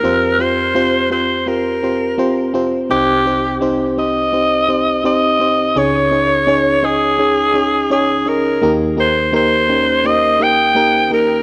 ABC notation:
X:1
M:4/4
L:1/8
Q:"Swing 16ths" 1/4=84
K:Cphr
V:1 name="Alto saxophone"
B c2 c B3 z | G2 z e3 e2 | d3 A3 A B | z c c2 e g2 B |]
V:2 name="FM electric piano"
[CFGc] [CFGc] [CFGc] [CFGc] [CFGc] [CFGc] [CFGc] [CFGc] | [CEGc] [CEGc] [CEGc] [CEGc] [CEGc] [CEGc] [CEGc] [CEGc] | [DEAd] [DEAd] [DEAd] [DEAe] [DEAd] [DEAd] [DEAd] [DEAd] | [B,EGB] [B,EGB] [B,EGB] [B,DEG] [B,EGc] [B,EGB] [B,EGB] [B,EGB] |]
V:3 name="FM electric piano" clef=bass
F,,8 | [C,,C,]8 | [D,,D,]8 | [E,,E,]8 |]